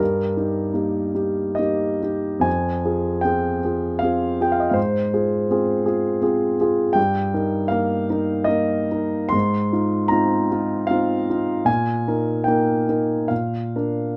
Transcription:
0.00 0.33 G2 soft
0.00 1.58 A#4 medium
0.37 0.70 D#4 soft
0.37 0.71 G4 soft
0.73 1.11 A#3 soft
0.73 1.11 D#4 soft
0.73 1.11 G4 soft
1.15 1.55 D#4 soft
1.15 1.55 G4 soft
1.55 1.99 A#3 soft
1.55 2.44 D#5 medium
1.59 1.99 D#4 soft
1.59 1.99 G4 soft
2.03 2.42 D#4 soft
2.03 2.42 G4 soft
2.40 2.81 F2 soft
2.40 3.23 G#5 medium
2.85 3.21 F4 soft
2.85 3.21 G#4 soft
3.21 3.60 C4 soft
3.21 3.60 F4 soft
3.21 4.01 G5 medium
3.26 3.61 G#4 soft
3.65 3.99 F4 soft
3.65 3.99 G#4 soft
3.99 4.36 C4 soft
3.99 4.41 F5 medium
4.03 4.37 F4 soft
4.03 4.37 G#4 soft
4.40 4.73 F4 soft
4.40 4.74 G#4 soft
4.40 4.51 G5 medium
4.52 4.60 F5 medium
4.60 4.68 D#5 soft
4.70 5.09 G#2 soft
4.70 4.77 F5 soft
4.74 6.21 C5 medium
5.13 5.46 F4 soft
5.13 5.46 G#4 soft
5.51 5.83 C4 soft
5.51 5.83 F4 soft
5.51 5.83 G#4 soft
5.86 6.19 F4 soft
5.86 6.19 G#4 soft
6.22 6.55 C4 soft
6.22 6.56 F4 soft
6.22 6.56 G#4 soft
6.61 6.94 F4 soft
6.61 6.94 G#4 soft
6.93 7.32 G2 soft
6.93 7.70 G5 medium
7.34 7.68 D#4 soft
7.34 7.68 A#4 soft
7.68 8.06 A#3 soft
7.68 8.06 D#4 soft
7.68 8.06 A#4 soft
7.68 8.48 F5 medium
8.10 8.46 D#4 soft
8.10 8.46 A#4 soft
8.44 8.87 A#3 soft
8.44 8.87 D#4 soft
8.44 8.87 A#4 soft
8.44 9.31 D#5 medium
8.91 9.30 D#4 soft
8.91 9.30 A#4 soft
9.29 9.71 G#2 medium
9.29 10.09 C6 medium
9.72 10.07 D#4 soft
9.72 10.07 F4 soft
10.08 10.46 C4 soft
10.08 10.46 D#4 soft
10.08 10.47 F4 soft
10.08 10.87 A#5 medium
10.52 10.86 D#4 soft
10.52 10.86 F4 soft
10.87 11.25 C4 soft
10.87 11.25 F4 soft
10.87 11.66 F5 medium
10.91 11.25 D#4 soft
11.30 11.65 D#4 soft
11.30 11.65 F4 soft
11.65 12.04 A#2 medium
11.65 12.46 G#5 medium
12.08 12.43 D#4 soft
12.08 12.43 A#4 soft
12.44 12.84 A#3 soft
12.44 12.84 D#4 soft
12.44 12.84 A#4 soft
12.44 13.29 G5 medium
12.89 13.27 D#4 soft
12.89 13.27 A#4 soft
13.28 13.74 A#2 soft
13.28 14.17 F5 medium
13.76 14.17 D4 soft
13.76 14.17 A#4 soft

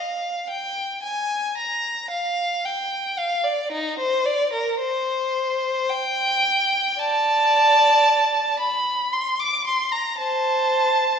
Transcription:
0.00 0.50 F5 medium
0.49 1.03 G5 medium
1.03 1.56 G#5 medium
1.58 2.10 A#5 medium
2.10 2.64 F5 medium
2.66 3.19 G5 medium
3.18 3.45 F5 medium
3.44 3.72 D5 medium
3.72 3.98 D#4 medium
3.99 4.26 C5 medium
4.25 4.53 D5 medium
4.53 4.79 A#4 medium
4.80 5.88 C5 medium
5.90 6.99 G5 medium
6.99 8.56 D5 medium
6.99 8.60 A5 loud
8.60 9.12 B5 medium
9.13 9.40 C6 medium
9.40 9.66 D6 medium
9.67 9.93 C6 medium
9.92 10.19 A#5 medium
10.19 11.19 C5 medium
10.19 11.19 A5 medium

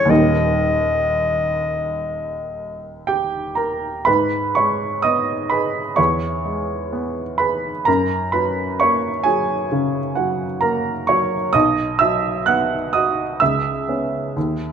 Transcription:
0.00 0.12 E2 medium
0.00 0.12 E3 medium
0.00 0.12 G#3 medium
0.00 0.13 C#4 medium
0.00 0.12 C#5 loud
0.05 4.01 D#2 medium
0.05 4.02 G3 soft
0.05 4.02 A#3 soft
0.05 4.03 D#4 soft
0.09 4.03 D#1 medium
0.09 3.09 D#5 medium
3.07 3.54 G4 medium
3.07 3.57 G5 medium
3.55 4.03 A#4 medium
3.55 4.06 A#5 medium
4.05 5.94 G#2 medium
4.05 4.53 B4 medium
4.05 4.55 B5 medium
4.55 5.33 G#3 soft
4.55 5.01 C#5 medium
4.55 5.04 C#6 medium
5.02 5.79 B3 soft
5.02 5.48 D#5 medium
5.02 5.50 D#6 medium
5.50 5.98 G#4 soft
5.50 5.94 B4 soft
5.50 5.97 B5 medium
5.96 7.83 E2 medium
5.96 7.36 C#5 medium
5.96 7.39 C#6 medium
6.45 7.21 G#3 soft
6.93 7.69 B3 soft
7.38 7.87 G#4 soft
7.38 7.83 B4 medium
7.38 7.86 B5 medium
7.85 9.68 F#2 medium
7.85 8.30 A#4 medium
7.85 8.32 A#5 medium
8.32 9.08 F#3 soft
8.32 8.76 B4 medium
8.32 8.79 B5 medium
8.80 9.54 A#3 soft
8.80 9.23 C#5 medium
8.80 9.26 C#6 medium
9.24 9.99 F#3 soft
9.24 10.13 G#4 medium
9.24 10.16 G#5 medium
9.72 10.45 C#3 soft
10.15 10.90 F#3 soft
10.15 10.59 F#4 soft
10.15 10.62 F#5 medium
10.61 11.36 A#3 soft
10.61 11.05 A#4 medium
10.61 11.08 A#5 medium
11.07 11.55 F#3 soft
11.07 11.51 C#5 medium
11.07 11.54 C#6 medium
11.53 13.37 B1 medium
11.53 11.96 D#5 medium
11.53 11.99 D#6 medium
11.99 12.75 F#3 soft
11.99 12.43 E5 medium
11.99 12.45 E6 medium
12.46 13.23 B3 soft
12.46 12.91 F#5 medium
12.46 12.93 F#6 medium
12.93 13.42 F#4 soft
12.93 13.38 D#5 medium
12.93 13.40 D#6 medium
13.40 14.34 C#2 soft
13.40 14.72 E5 medium
13.40 14.72 E6 medium
13.89 14.32 B3 soft
13.89 14.33 C#4 soft
14.36 14.72 D#2 soft

